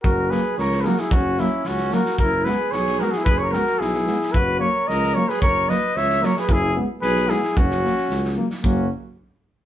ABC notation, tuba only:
X:1
M:2/4
L:1/8
Q:1/4=112
K:F#mix
V:1 name="Tuba" clef=bass
F,,,2 C,,2 | F,,,2 C,,2 | F,,,2 B,,,2 | F,,,2 B,,,2 |
F,,,2 C,,2 | F,,,2 C,,2 | F,,,2 B,,,2 | F,,,2 C,,2 |
F,,, z3 |]